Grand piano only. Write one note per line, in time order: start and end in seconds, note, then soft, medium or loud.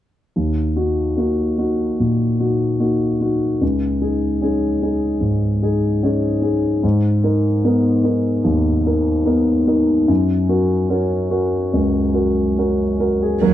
0.36 0.76 D#2 soft
0.76 1.14 D#4 soft
0.76 1.14 F#4 soft
1.17 1.54 A#3 soft
1.17 1.54 D#4 soft
1.17 1.55 F#4 soft
1.58 1.95 D#4 soft
1.58 1.96 F#4 soft
2.00 2.39 A#2 soft
2.40 2.77 D#4 soft
2.40 2.77 F#4 soft
2.80 3.17 A#3 soft
2.80 3.17 D#4 soft
2.80 3.17 F#4 soft
3.21 3.57 D#4 soft
3.21 3.58 F#4 soft
3.61 4.00 C#2 soft
4.01 4.38 D#4 soft
4.01 4.38 G#4 soft
4.41 4.78 C#4 soft
4.41 4.78 D#4 soft
4.41 4.78 G#4 soft
4.82 5.18 D#4 soft
4.82 5.19 G#4 soft
5.21 5.60 G#2 soft
5.62 5.98 D#4 soft
5.62 5.99 G#4 soft
6.03 6.39 C#4 soft
6.03 6.39 D#4 soft
6.03 6.39 G#4 soft
6.42 6.79 D#4 soft
6.42 6.79 G#4 soft
6.83 7.22 G#2 soft
7.24 7.60 D#4 soft
7.24 7.60 A#4 soft
7.64 8.01 B3 soft
7.64 8.01 D#4 soft
7.64 8.01 A#4 soft
8.04 8.41 D#4 soft
8.04 8.41 A#4 soft
8.44 8.84 D#2 soft
8.87 9.23 D#4 soft
8.87 9.23 A#4 soft
9.25 9.63 B3 soft
9.25 9.64 D#4 soft
9.25 9.64 A#4 soft
9.67 10.05 D#4 soft
9.67 10.05 A#4 soft
10.08 10.48 F#2 soft
10.49 10.87 F#4 soft
10.49 10.87 A#4 soft
10.90 11.28 C#4 soft
10.90 11.28 F#4 soft
10.90 11.28 A#4 soft
11.31 11.69 F#4 soft
11.31 11.69 A#4 soft
11.73 12.14 C#2 soft
12.14 12.53 F#4 soft
12.14 12.53 A#4 soft
12.58 12.96 C#4 soft
12.58 12.97 F#4 soft
12.58 12.97 A#4 soft
13.00 13.38 F#4 soft
13.00 13.20 A#4 soft
13.22 13.41 G#4 soft
13.41 13.54 D#2 soft
13.41 13.54 A#4 soft